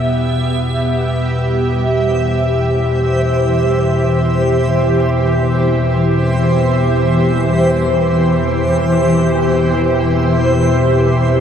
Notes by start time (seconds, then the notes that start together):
Already playing: E2 B2 B3 G4 E5
0.72 E3 C5
2.49 C5